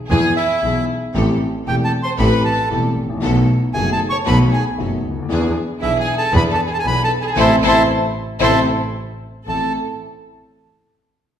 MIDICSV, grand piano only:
0, 0, Header, 1, 2, 480
1, 0, Start_track
1, 0, Key_signature, 0, "minor"
1, 0, Tempo, 521286
1, 1054, Time_signature, 4, 2, 24, 8
1, 10488, End_track
2, 0, Start_track
2, 0, Title_t, "Grand piano"
2, 0, Program_c, 0, 0
2, 91, Note_on_c, 0, 56, 57
2, 92, Note_on_c, 0, 52, 78
2, 97, Note_on_c, 0, 40, 78
2, 99, Note_on_c, 0, 59, 65
2, 103, Note_on_c, 0, 68, 80
2, 292, Note_off_c, 0, 56, 0
2, 294, Note_off_c, 0, 52, 0
2, 295, Note_off_c, 0, 40, 0
2, 296, Note_off_c, 0, 59, 0
2, 298, Note_off_c, 0, 68, 0
2, 572, Note_on_c, 0, 52, 42
2, 574, Note_on_c, 0, 56, 38
2, 576, Note_on_c, 0, 47, 57
2, 579, Note_on_c, 0, 35, 57
2, 581, Note_on_c, 0, 59, 40
2, 583, Note_on_c, 0, 68, 47
2, 775, Note_off_c, 0, 52, 0
2, 776, Note_off_c, 0, 56, 0
2, 777, Note_off_c, 0, 47, 0
2, 778, Note_off_c, 0, 35, 0
2, 779, Note_off_c, 0, 59, 0
2, 780, Note_off_c, 0, 68, 0
2, 1052, Note_on_c, 0, 57, 66
2, 1057, Note_on_c, 0, 33, 83
2, 1057, Note_on_c, 0, 45, 86
2, 1057, Note_on_c, 0, 52, 61
2, 1061, Note_on_c, 0, 67, 77
2, 1062, Note_on_c, 0, 60, 65
2, 1256, Note_off_c, 0, 57, 0
2, 1258, Note_off_c, 0, 33, 0
2, 1258, Note_off_c, 0, 45, 0
2, 1258, Note_off_c, 0, 52, 0
2, 1260, Note_off_c, 0, 60, 0
2, 1260, Note_off_c, 0, 67, 0
2, 1533, Note_on_c, 0, 52, 52
2, 1536, Note_on_c, 0, 28, 54
2, 1538, Note_on_c, 0, 60, 44
2, 1540, Note_on_c, 0, 40, 61
2, 1540, Note_on_c, 0, 67, 49
2, 1542, Note_on_c, 0, 57, 46
2, 1736, Note_off_c, 0, 52, 0
2, 1738, Note_off_c, 0, 28, 0
2, 1738, Note_off_c, 0, 60, 0
2, 1739, Note_off_c, 0, 67, 0
2, 1740, Note_off_c, 0, 40, 0
2, 1740, Note_off_c, 0, 57, 0
2, 2011, Note_on_c, 0, 60, 54
2, 2012, Note_on_c, 0, 52, 76
2, 2012, Note_on_c, 0, 57, 65
2, 2014, Note_on_c, 0, 33, 81
2, 2015, Note_on_c, 0, 45, 70
2, 2018, Note_on_c, 0, 67, 69
2, 2215, Note_off_c, 0, 60, 0
2, 2216, Note_off_c, 0, 52, 0
2, 2216, Note_off_c, 0, 57, 0
2, 2217, Note_off_c, 0, 33, 0
2, 2217, Note_off_c, 0, 45, 0
2, 2219, Note_off_c, 0, 67, 0
2, 2485, Note_on_c, 0, 52, 44
2, 2488, Note_on_c, 0, 28, 53
2, 2489, Note_on_c, 0, 60, 41
2, 2490, Note_on_c, 0, 40, 58
2, 2490, Note_on_c, 0, 57, 42
2, 2493, Note_on_c, 0, 67, 53
2, 2689, Note_off_c, 0, 52, 0
2, 2690, Note_off_c, 0, 28, 0
2, 2691, Note_off_c, 0, 40, 0
2, 2691, Note_off_c, 0, 57, 0
2, 2691, Note_off_c, 0, 60, 0
2, 2693, Note_off_c, 0, 67, 0
2, 2794, Note_on_c, 0, 32, 48
2, 2848, Note_on_c, 0, 33, 61
2, 2852, Note_off_c, 0, 32, 0
2, 2909, Note_off_c, 0, 33, 0
2, 2912, Note_on_c, 0, 34, 64
2, 2950, Note_on_c, 0, 51, 65
2, 2954, Note_on_c, 0, 47, 76
2, 2957, Note_on_c, 0, 57, 68
2, 2958, Note_on_c, 0, 35, 83
2, 2959, Note_on_c, 0, 59, 68
2, 2962, Note_on_c, 0, 66, 79
2, 2971, Note_off_c, 0, 34, 0
2, 3161, Note_off_c, 0, 51, 0
2, 3163, Note_off_c, 0, 47, 0
2, 3164, Note_off_c, 0, 57, 0
2, 3165, Note_off_c, 0, 35, 0
2, 3166, Note_off_c, 0, 59, 0
2, 3167, Note_off_c, 0, 66, 0
2, 3443, Note_on_c, 0, 57, 49
2, 3446, Note_on_c, 0, 51, 53
2, 3446, Note_on_c, 0, 59, 47
2, 3448, Note_on_c, 0, 30, 64
2, 3449, Note_on_c, 0, 42, 61
2, 3453, Note_on_c, 0, 66, 61
2, 3646, Note_off_c, 0, 57, 0
2, 3647, Note_off_c, 0, 51, 0
2, 3648, Note_off_c, 0, 59, 0
2, 3649, Note_off_c, 0, 30, 0
2, 3649, Note_off_c, 0, 42, 0
2, 3651, Note_off_c, 0, 66, 0
2, 3916, Note_on_c, 0, 57, 59
2, 3919, Note_on_c, 0, 51, 66
2, 3920, Note_on_c, 0, 35, 82
2, 3920, Note_on_c, 0, 47, 91
2, 3920, Note_on_c, 0, 66, 81
2, 3923, Note_on_c, 0, 59, 63
2, 4120, Note_off_c, 0, 57, 0
2, 4121, Note_off_c, 0, 51, 0
2, 4122, Note_off_c, 0, 35, 0
2, 4122, Note_off_c, 0, 47, 0
2, 4122, Note_off_c, 0, 66, 0
2, 4124, Note_off_c, 0, 59, 0
2, 4405, Note_on_c, 0, 57, 38
2, 4408, Note_on_c, 0, 30, 59
2, 4408, Note_on_c, 0, 42, 57
2, 4410, Note_on_c, 0, 51, 47
2, 4412, Note_on_c, 0, 59, 42
2, 4415, Note_on_c, 0, 66, 55
2, 4602, Note_off_c, 0, 57, 0
2, 4603, Note_off_c, 0, 30, 0
2, 4604, Note_off_c, 0, 42, 0
2, 4605, Note_off_c, 0, 51, 0
2, 4606, Note_off_c, 0, 59, 0
2, 4607, Note_off_c, 0, 66, 0
2, 4698, Note_on_c, 0, 37, 51
2, 4757, Note_off_c, 0, 37, 0
2, 4766, Note_on_c, 0, 38, 59
2, 4807, Note_on_c, 0, 39, 70
2, 4821, Note_off_c, 0, 38, 0
2, 4869, Note_on_c, 0, 52, 86
2, 4869, Note_on_c, 0, 59, 60
2, 4871, Note_off_c, 0, 39, 0
2, 4871, Note_on_c, 0, 40, 80
2, 4871, Note_on_c, 0, 62, 62
2, 4878, Note_on_c, 0, 68, 79
2, 5073, Note_off_c, 0, 59, 0
2, 5074, Note_off_c, 0, 40, 0
2, 5074, Note_off_c, 0, 52, 0
2, 5074, Note_off_c, 0, 62, 0
2, 5078, Note_off_c, 0, 68, 0
2, 5353, Note_on_c, 0, 59, 44
2, 5354, Note_on_c, 0, 52, 58
2, 5354, Note_on_c, 0, 68, 54
2, 5356, Note_on_c, 0, 47, 59
2, 5359, Note_on_c, 0, 35, 56
2, 5361, Note_on_c, 0, 62, 44
2, 5553, Note_off_c, 0, 59, 0
2, 5554, Note_off_c, 0, 52, 0
2, 5554, Note_off_c, 0, 68, 0
2, 5555, Note_off_c, 0, 47, 0
2, 5556, Note_off_c, 0, 35, 0
2, 5557, Note_off_c, 0, 62, 0
2, 5820, Note_on_c, 0, 52, 83
2, 5826, Note_on_c, 0, 40, 90
2, 5826, Note_on_c, 0, 59, 65
2, 5828, Note_on_c, 0, 62, 60
2, 5828, Note_on_c, 0, 68, 75
2, 6028, Note_off_c, 0, 52, 0
2, 6030, Note_off_c, 0, 40, 0
2, 6030, Note_off_c, 0, 59, 0
2, 6031, Note_off_c, 0, 62, 0
2, 6031, Note_off_c, 0, 68, 0
2, 6309, Note_on_c, 0, 47, 57
2, 6309, Note_on_c, 0, 52, 46
2, 6309, Note_on_c, 0, 59, 41
2, 6309, Note_on_c, 0, 62, 42
2, 6312, Note_on_c, 0, 35, 57
2, 6312, Note_on_c, 0, 68, 54
2, 6512, Note_off_c, 0, 47, 0
2, 6512, Note_off_c, 0, 52, 0
2, 6512, Note_off_c, 0, 59, 0
2, 6512, Note_off_c, 0, 62, 0
2, 6514, Note_off_c, 0, 35, 0
2, 6514, Note_off_c, 0, 68, 0
2, 6776, Note_on_c, 0, 48, 93
2, 6777, Note_on_c, 0, 52, 84
2, 6779, Note_on_c, 0, 57, 97
2, 6936, Note_off_c, 0, 48, 0
2, 6936, Note_off_c, 0, 52, 0
2, 6938, Note_off_c, 0, 57, 0
2, 7030, Note_on_c, 0, 52, 92
2, 7032, Note_on_c, 0, 57, 78
2, 7033, Note_on_c, 0, 48, 88
2, 7184, Note_off_c, 0, 52, 0
2, 7186, Note_off_c, 0, 48, 0
2, 7186, Note_off_c, 0, 57, 0
2, 7736, Note_on_c, 0, 48, 96
2, 7737, Note_on_c, 0, 57, 78
2, 7738, Note_on_c, 0, 52, 81
2, 7899, Note_off_c, 0, 48, 0
2, 7900, Note_off_c, 0, 52, 0
2, 7900, Note_off_c, 0, 57, 0
2, 8724, Note_on_c, 0, 60, 41
2, 8729, Note_on_c, 0, 33, 52
2, 8730, Note_on_c, 0, 69, 60
2, 8731, Note_on_c, 0, 64, 44
2, 8928, Note_off_c, 0, 60, 0
2, 8931, Note_off_c, 0, 33, 0
2, 8931, Note_off_c, 0, 69, 0
2, 8932, Note_off_c, 0, 64, 0
2, 10488, End_track
0, 0, End_of_file